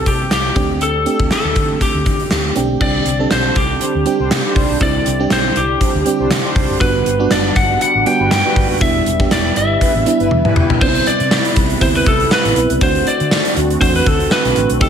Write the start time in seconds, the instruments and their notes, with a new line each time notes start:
Already playing: analog synth pad E3 G3 C4 G4, fm electric piano G3 C4 E4 G4
0.06 fretless electric bass C3, lead electric guitar G4, kick, closed hi-hat
0.30 fretless electric bass C2, lead electric guitar G4, snare, closed hi-hat
0.55 fretless electric bass D2, analog synth pad D3 A3 C4, fm electric piano A3 C4 D4 G4, kick, closed hi-hat
0.81 lead electric guitar A4, closed hi-hat
1.05 fm electric piano A3 C4 D4 G4, closed hi-hat
1.20 fretless electric bass D2, kick
1.31 lead electric guitar A4, snare, closed hi-hat
1.44 fretless electric bass D2
1.56 fretless electric bass D3, kick, closed hi-hat
1.81 lead electric guitar G4, kick, closed hi-hat
1.94 fretless electric bass D2
2.06 fretless electric bass D3, kick, closed hi-hat
2.20 closed hi-hat
2.31 fretless electric bass D2, snare, closed hi-hat
2.56 fretless electric bass B1, fm electric piano A3 C4 D4 G4, closed hi-hat
2.81 fretless electric bass C2, analog synth pad D3 G3 C4 G4, fm electric piano G3 C4 D4 G4, lead electric guitar D5, kick, crash
3.05 fretless electric bass C2, closed hi-hat
3.19 fm electric piano G3 C4 D4 A4
3.31 fretless electric bass B1, lead electric guitar C5, snare, closed hi-hat
3.56 fretless electric bass C2, lead electric guitar G4, kick, closed hi-hat
3.81 analog polysynth G3 D4 C5, closed hi-hat
3.94 fretless electric bass D2
4.05 fm electric piano G3 C4 D4 G4, closed hi-hat
4.19 fretless electric bass C2, analog polysynth G3 D4 C5
4.31 fretless electric bass C3, snare, closed hi-hat
4.45 analog polysynth G3 D4 C5
4.56 fretless electric bass C2, analog polysynth G3 D4 C5, kick, open hi-hat
4.69 fretless electric bass B1
4.80 fretless electric bass C2, fm electric piano G3 C4 D4 E4, lead electric guitar D5, kick, closed hi-hat
5.06 fretless electric bass C2, closed hi-hat
5.19 fm electric piano G3 C4 D4 G4
5.30 fretless electric bass B1, lead electric guitar C5, snare, closed hi-hat
5.56 fretless electric bass C2, lead electric guitar G4, closed hi-hat
5.81 analog polysynth G3 D4 C5, kick, closed hi-hat
5.95 fretless electric bass D2
6.05 fm electric piano G3 C4 D4 G4, closed hi-hat
6.19 fretless electric bass C2, analog polysynth G3 D4 C5
6.31 fretless electric bass C3, snare, closed hi-hat
6.44 analog polysynth G3 D4 C5
6.56 fretless electric bass C2, analog polysynth G3 D4 C5, kick, open hi-hat
6.70 fretless electric bass F#1
6.80 fretless electric bass G1, fm electric piano G3 B3 D4 F#4, analog synth pad B3 D4, lead electric guitar B4, kick, closed hi-hat
7.06 fretless electric bass G1, closed hi-hat
7.19 fm electric piano G3 B3 D4 F#4
7.31 fretless electric bass F#1, lead electric guitar D5, snare, closed hi-hat
7.56 fretless electric bass G1, lead electric guitar F#5, kick, closed hi-hat
7.81 analog polysynth G3 F#4 B4, lead electric guitar F#5, closed hi-hat
7.95 fretless electric bass A1
8.06 fm electric piano G3 B3 D4 F#4, lead electric guitar G5, closed hi-hat
8.20 fretless electric bass G1, analog polysynth G3 F#4 B4
8.31 fretless electric bass G2, lead electric guitar G5, snare, closed hi-hat
8.45 analog polysynth G3 F#4 B4
8.56 fretless electric bass G1, analog polysynth G3 F#4 B4, kick, open hi-hat
8.70 fretless electric bass F#1
8.81 fretless electric bass E1, fm electric piano G3 B3 D4 E4, analog synth pad E4, lead electric guitar E5, kick, closed hi-hat
9.06 fretless electric bass E1, closed hi-hat
9.20 fm electric piano G3 B3 D4 G4, kick
9.31 fretless electric bass E1, lead electric guitar D5, snare, closed hi-hat
9.56 fretless electric bass G1, lead electric guitar E5, closed hi-hat
9.81 analog polysynth G3 E4 B4, kick, closed hi-hat
9.95 fretless electric bass A1
10.06 fm electric piano G3 B3 D4 E4, closed hi-hat
10.20 fretless electric bass G1, analog polysynth G3 E4 B4, closed hi-hat
10.31 fretless electric bass E2, high tom
10.45 analog polysynth G3 E4 B4, mid tom
10.56 fretless electric bass E1, analog polysynth G3 E4 B4, mid tom
10.70 fretless electric bass B1, floor tom
10.81 fretless electric bass C2, analog synth pad C3 G3 E4 B4, fm electric piano G3 B3 C4 D4, lead electric guitar C5, kick, crash
10.88 fm electric piano E4
10.95 closed hi-hat
11.06 lead electric guitar D5, closed hi-hat
11.20 fretless electric bass C3, closed hi-hat
11.31 snare, tambourine
11.45 closed hi-hat
11.56 fretless electric bass C2, kick, closed hi-hat
11.70 closed hi-hat
11.81 fretless electric bass D2, fm electric piano G3 B3 C4 E4, lead electric guitar C5, kick, closed hi-hat
11.95 lead electric guitar B4, closed hi-hat
12.06 fretless electric bass C2, lead electric guitar A4, kick, closed hi-hat
12.20 closed hi-hat
12.31 lead electric guitar B4, snare, tambourine
12.45 fretless electric bass A1, closed hi-hat
12.56 fretless electric bass B1, closed hi-hat
12.70 fretless electric bass C2, closed hi-hat
12.81 analog synth pad D3 A3 C4 F#4, fm electric piano A3 C4 D4 F#4, lead electric guitar C5, kick, closed hi-hat
12.95 closed hi-hat
13.07 lead electric guitar D5, closed hi-hat
13.20 fretless electric bass D3, closed hi-hat
13.31 snare, tambourine
13.45 closed hi-hat
13.56 fretless electric bass D2, closed hi-hat
13.71 closed hi-hat
13.80 fretless electric bass E2, fm electric piano A3 C4 D4 F#4, lead electric guitar C5, kick, closed hi-hat
13.95 lead electric guitar B4, closed hi-hat
14.06 fretless electric bass D2, lead electric guitar A4, kick, closed hi-hat
14.20 closed hi-hat
14.31 lead electric guitar B4, snare, tambourine
14.45 fretless electric bass B1, closed hi-hat
14.56 fretless electric bass A1, closed hi-hat
14.70 fretless electric bass B1, closed hi-hat
14.80 fretless electric bass C2, analog synth pad D#3 G4, fm electric piano A3 C4 D#4 G4, lead electric guitar A4, kick, closed hi-hat